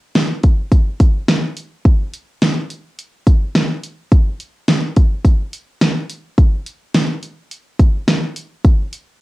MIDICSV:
0, 0, Header, 1, 2, 480
1, 0, Start_track
1, 0, Tempo, 566038
1, 1570, Time_signature, 4, 2, 24, 8
1, 7812, End_track
2, 0, Start_track
2, 0, Title_t, "Drums"
2, 129, Note_on_c, 9, 42, 65
2, 130, Note_on_c, 9, 38, 109
2, 213, Note_off_c, 9, 42, 0
2, 215, Note_off_c, 9, 38, 0
2, 368, Note_on_c, 9, 42, 61
2, 371, Note_on_c, 9, 36, 84
2, 453, Note_off_c, 9, 42, 0
2, 456, Note_off_c, 9, 36, 0
2, 608, Note_on_c, 9, 36, 85
2, 610, Note_on_c, 9, 42, 74
2, 693, Note_off_c, 9, 36, 0
2, 694, Note_off_c, 9, 42, 0
2, 848, Note_on_c, 9, 42, 77
2, 849, Note_on_c, 9, 36, 87
2, 933, Note_off_c, 9, 36, 0
2, 933, Note_off_c, 9, 42, 0
2, 1089, Note_on_c, 9, 38, 96
2, 1090, Note_on_c, 9, 42, 74
2, 1174, Note_off_c, 9, 38, 0
2, 1175, Note_off_c, 9, 42, 0
2, 1329, Note_on_c, 9, 42, 80
2, 1414, Note_off_c, 9, 42, 0
2, 1570, Note_on_c, 9, 36, 109
2, 1571, Note_on_c, 9, 42, 59
2, 1655, Note_off_c, 9, 36, 0
2, 1655, Note_off_c, 9, 42, 0
2, 1811, Note_on_c, 9, 42, 71
2, 1895, Note_off_c, 9, 42, 0
2, 2050, Note_on_c, 9, 42, 63
2, 2052, Note_on_c, 9, 38, 106
2, 2135, Note_off_c, 9, 42, 0
2, 2137, Note_off_c, 9, 38, 0
2, 2291, Note_on_c, 9, 42, 62
2, 2376, Note_off_c, 9, 42, 0
2, 2533, Note_on_c, 9, 42, 74
2, 2618, Note_off_c, 9, 42, 0
2, 2770, Note_on_c, 9, 36, 88
2, 2772, Note_on_c, 9, 42, 77
2, 2855, Note_off_c, 9, 36, 0
2, 2857, Note_off_c, 9, 42, 0
2, 3010, Note_on_c, 9, 38, 96
2, 3012, Note_on_c, 9, 42, 75
2, 3095, Note_off_c, 9, 38, 0
2, 3096, Note_off_c, 9, 42, 0
2, 3251, Note_on_c, 9, 42, 81
2, 3336, Note_off_c, 9, 42, 0
2, 3492, Note_on_c, 9, 36, 112
2, 3492, Note_on_c, 9, 42, 58
2, 3576, Note_off_c, 9, 36, 0
2, 3577, Note_off_c, 9, 42, 0
2, 3732, Note_on_c, 9, 42, 72
2, 3817, Note_off_c, 9, 42, 0
2, 3970, Note_on_c, 9, 42, 62
2, 3971, Note_on_c, 9, 38, 105
2, 4055, Note_off_c, 9, 42, 0
2, 4056, Note_off_c, 9, 38, 0
2, 4210, Note_on_c, 9, 42, 61
2, 4212, Note_on_c, 9, 36, 86
2, 4294, Note_off_c, 9, 42, 0
2, 4297, Note_off_c, 9, 36, 0
2, 4449, Note_on_c, 9, 36, 85
2, 4452, Note_on_c, 9, 42, 71
2, 4534, Note_off_c, 9, 36, 0
2, 4537, Note_off_c, 9, 42, 0
2, 4691, Note_on_c, 9, 42, 78
2, 4776, Note_off_c, 9, 42, 0
2, 4930, Note_on_c, 9, 38, 96
2, 4932, Note_on_c, 9, 42, 74
2, 5015, Note_off_c, 9, 38, 0
2, 5016, Note_off_c, 9, 42, 0
2, 5170, Note_on_c, 9, 42, 83
2, 5255, Note_off_c, 9, 42, 0
2, 5411, Note_on_c, 9, 36, 109
2, 5412, Note_on_c, 9, 42, 60
2, 5496, Note_off_c, 9, 36, 0
2, 5497, Note_off_c, 9, 42, 0
2, 5651, Note_on_c, 9, 42, 73
2, 5736, Note_off_c, 9, 42, 0
2, 5889, Note_on_c, 9, 42, 63
2, 5891, Note_on_c, 9, 38, 105
2, 5974, Note_off_c, 9, 42, 0
2, 5976, Note_off_c, 9, 38, 0
2, 6130, Note_on_c, 9, 42, 61
2, 6215, Note_off_c, 9, 42, 0
2, 6372, Note_on_c, 9, 42, 74
2, 6457, Note_off_c, 9, 42, 0
2, 6610, Note_on_c, 9, 36, 91
2, 6610, Note_on_c, 9, 42, 78
2, 6694, Note_off_c, 9, 36, 0
2, 6695, Note_off_c, 9, 42, 0
2, 6850, Note_on_c, 9, 38, 96
2, 6851, Note_on_c, 9, 42, 76
2, 6934, Note_off_c, 9, 38, 0
2, 6936, Note_off_c, 9, 42, 0
2, 7089, Note_on_c, 9, 42, 84
2, 7174, Note_off_c, 9, 42, 0
2, 7331, Note_on_c, 9, 36, 111
2, 7331, Note_on_c, 9, 42, 60
2, 7415, Note_off_c, 9, 36, 0
2, 7416, Note_off_c, 9, 42, 0
2, 7570, Note_on_c, 9, 42, 68
2, 7655, Note_off_c, 9, 42, 0
2, 7812, End_track
0, 0, End_of_file